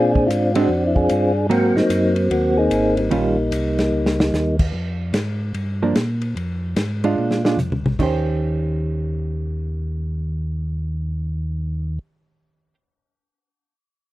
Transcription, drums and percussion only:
0.15 kick
0.30 hi-hat pedal, ride
0.55 ride
0.96 kick
1.09 hi-hat pedal, ride
1.51 ride
1.77 snare
1.90 hi-hat pedal, ride
2.16 ride
2.31 ride
2.71 hi-hat pedal, ride
2.97 ride
3.11 ride
3.52 hi-hat pedal, ride
3.79 snare, ride
4.06 snare
4.20 snare
4.34 snare, hi-hat pedal
4.59 kick, crash
5.14 snare, hi-hat pedal, ride
5.54 ride
5.96 snare, hi-hat pedal, ride
6.22 ride
6.37 ride
6.76 snare, hi-hat pedal, ride
7.04 ride
7.31 snare
7.45 snare
7.59 hi-hat pedal, mid tom
7.72 mid tom
7.86 mid tom
7.99 kick, crash

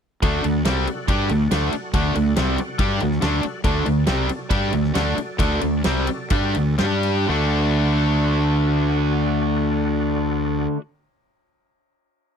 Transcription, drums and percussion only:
0.23 kick, ride
0.44 ride
0.65 snare, ride
0.87 ride
1.08 kick, ride
1.29 ride
1.51 snare, ride
1.73 ride
1.94 kick, ride
2.15 ride
2.36 snare, ride
2.58 ride
2.79 kick, ride
3.00 ride
3.11 snare
3.22 snare, ride
3.43 ride
3.64 kick, ride
3.86 ride
4.07 snare, ride
4.29 ride
4.50 kick, ride
4.73 ride
4.84 snare
4.95 snare, ride
5.18 ride
5.39 kick, ride
5.61 ride
5.84 snare, ride
6.07 ride
6.30 kick, ride
6.55 ride
6.78 snare, ride
7.03 ride

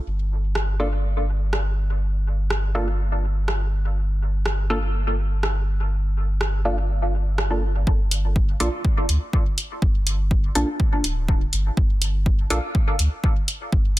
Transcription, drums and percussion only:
0.55 cross-stick
1.53 cross-stick
2.50 cross-stick
3.48 cross-stick
4.46 cross-stick
5.43 cross-stick
6.41 cross-stick
7.38 cross-stick
7.87 kick
8.11 closed hi-hat
8.36 kick
8.60 closed hi-hat
8.85 kick
9.09 closed hi-hat
9.33 kick
9.58 closed hi-hat
9.82 kick
10.07 closed hi-hat
10.31 kick
10.55 closed hi-hat
10.80 kick
11.04 closed hi-hat
11.28 kick
11.53 closed hi-hat
11.77 kick
12.02 closed hi-hat
12.26 kick
12.50 closed hi-hat
12.75 kick
12.99 closed hi-hat
13.24 kick
13.48 closed hi-hat
13.72 kick

